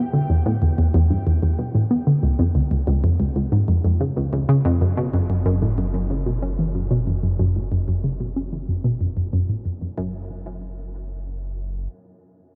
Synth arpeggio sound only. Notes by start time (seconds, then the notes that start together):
0.13 D3
0.30 E2
0.46 A2
0.62 E2
0.78 E2
0.94 E2
1.10 G2
1.27 E2
1.43 E2
1.59 B2
1.75 A2
1.91 B3
2.07 D3
2.23 C#2
2.39 F2
2.55 C#2
2.71 C#2
2.87 C#2
3.04 F2
3.20 C#2
3.36 C#2
3.52 G#2
3.68 F2
3.85 F2
4.01 C#3
4.17 C#2
4.33 C#2
4.49 C#3
4.65 F2
4.81 F#2
4.97 B2
5.14 F#2
5.30 F#2
5.46 F#2
5.62 A2
5.78 F#2
5.94 F#2
6.10 C#3
6.26 B2
6.42 C#4
6.59 E3
6.75 F#2
6.91 B2
7.07 F#2
7.23 F#2
7.39 F#2
7.56 A2
7.72 F#2
7.88 F#2
8.04 C#3
8.20 B2
8.36 C#4
8.52 E3
8.69 F#2
8.84 B2
9.01 F#2
9.17 F#2
9.33 F#2
9.49 A2
9.65 F#2
9.81 F#2
9.98 F#2